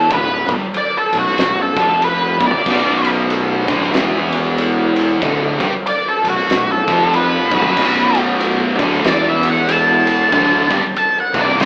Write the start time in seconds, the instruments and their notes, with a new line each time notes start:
Already playing: distorted electric guitar E2 E3, lead electric guitar A4
0.10 fingered electric bass D1, distorted electric guitar D2 D3, lead electric guitar B4, kick, ride
0.48 fingered electric bass G1, distorted electric guitar G2 G3, kick, ride
0.61 muted fingered electric bass stroke, muted distorted electric guitar stroke
0.74 lead electric guitar D5, ride
0.98 lead electric guitar A4
1.12 fingered electric bass B0, distorted electric guitar B1, ride
1.19 lead electric guitar F#4
1.27 snare
1.38 fingered electric bass B0, distorted electric guitar B1, snare, ride
1.62 lead electric guitar A4
1.76 fingered electric bass F1, distorted electric guitar F2 F3, kick, ride
2.02 lead electric guitar B4, ride
2.40 fingered electric bass B0, distorted electric guitar B1 B2, kick, ride
2.47 lead electric guitar D5
2.54 fingered electric bass F#1, distorted electric guitar F#2 F#3
2.66 fingered electric bass B0, distorted electric guitar B1 B2, kick, crash
3.05 ride
3.30 ride
3.68 fingered electric bass D1, distorted electric guitar D2 D3, kick, ride
3.83 snare
3.93 fingered electric bass E1, distorted electric guitar E2 E3, snare, ride
4.32 ride
4.58 ride
4.96 ride
5.22 fingered electric bass D1, distorted electric guitar D2 D3, kick, ride
5.60 fingered electric bass G1, distorted electric guitar G2 G3, kick, ride
5.73 muted fingered electric bass stroke, muted distorted electric guitar stroke
5.87 lead electric guitar D5, ride
6.08 lead electric guitar A4
6.24 fingered electric bass B0, distorted electric guitar B1, ride
6.29 lead electric guitar F#4
6.39 snare
6.49 fingered electric bass B0, distorted electric guitar B1, snare, ride
6.72 lead electric guitar A4
6.87 fingered electric bass F1, distorted electric guitar F2 F3, kick, ride
7.13 lead electric guitar B4, ride
7.51 fingered electric bass B0, distorted electric guitar B1 B2, kick, ride
7.58 lead electric guitar B4
7.64 fingered electric bass F#1, distorted electric guitar F#2 F#3
7.76 fingered electric bass B0, distorted electric guitar B1 B2, kick, crash
8.15 ride
8.40 ride
8.78 fingered electric bass D1, distorted electric guitar D2 D3, kick, ride
8.93 snare
9.04 fingered electric bass E1, distorted electric guitar E2 E3, lead electric guitar D5, snare, ride
9.29 lead electric guitar E5
9.43 ride
9.50 lead electric guitar F#5
9.69 lead electric guitar A5, ride
10.07 ride
10.32 fingered electric bass D1, distorted electric guitar D2 D3, kick, ride
10.70 fingered electric bass G1, distorted electric guitar G2 G3, kick, ride
10.83 muted distorted electric guitar stroke, muted fingered electric bass stroke
10.96 lead electric guitar A5, ride
11.20 lead electric guitar F#5
11.34 fingered electric bass C1, distorted electric guitar C2 C3, kick, ride
11.41 lead electric guitar D5
11.60 fingered electric bass E1, distorted electric guitar E2 E3, lead electric guitar D5, snare, ride